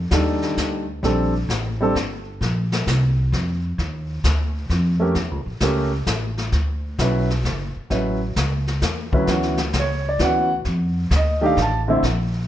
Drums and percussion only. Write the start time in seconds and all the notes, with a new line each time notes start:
0.11 kick, snare, hi-hat pedal
0.42 snare
0.57 kick, snare, hi-hat pedal
1.03 brush sweep, kick, snare
1.49 kick, snare, hi-hat pedal
1.95 kick, snare
2.41 brush sweep, kick, snare
2.72 snare
2.87 kick, snare, hi-hat pedal
3.33 kick, snare
3.79 brush sweep, kick, snare
4.24 kick, snare, hi-hat pedal
4.70 kick, snare
5.15 brush sweep, kick, snare
5.60 kick, snare, hi-hat pedal
6.06 kick, snare, hi-hat pedal
6.38 snare
6.52 brush sweep, kick, snare
6.99 kick, snare, hi-hat pedal
7.30 snare
7.45 kick, snare
7.90 brush sweep, kick, snare
8.36 kick, snare, hi-hat pedal
8.67 snare
8.82 kick, snare, hi-hat pedal
9.13 kick
9.27 brush sweep, kick, snare
9.43 snare
9.57 snare
9.73 kick, snare, hi-hat pedal
10.19 kick, snare
10.65 brush sweep, kick, snare
11.11 kick, snare, hi-hat pedal
11.57 kick, snare
12.03 brush sweep, kick, snare